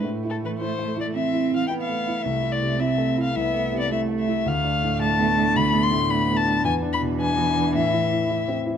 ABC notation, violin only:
X:1
M:4/4
L:1/16
Q:1/4=109
K:Am
V:1 name="Violin"
z2 A B c3 d e3 f g f3 | e2 d2 e3 f e3 d e2 e2 | f4 a4 b2 c'2 b2 a2 | ^g2 b2 g4 e6 z2 |]